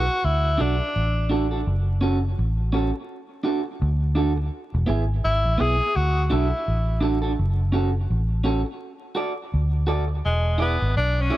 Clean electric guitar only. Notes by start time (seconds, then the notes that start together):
0.58 D4 F#4 A4
1.30 D4 F#4 A4
1.51 D4 F#4 A4
2.01 C#4 F#4 A4
2.73 C#4 F#4 A4
2.94 muted clean electric guitar stroke
3.44 D4 F#4 A4
3.64 muted clean electric guitar stroke
4.15 D4 F#4 A4
4.36 muted clean electric guitar stroke
4.86 B3 E4 G#4
5.58 B3 E4 G#4
6.30 D4 F#4 A4
7.01 D4 F#4 A4
7.22 D4 F#4 A4
7.72 C#4 F#4 A4
8.44 C#4 F#4 A4
8.65 muted clean electric guitar stroke
9.15 F#4 A4 D5
9.87 F#4 A4 D5
10.08 muted clean electric guitar stroke
10.58 E4 G#4 D5
11.30 E4 G#4 D5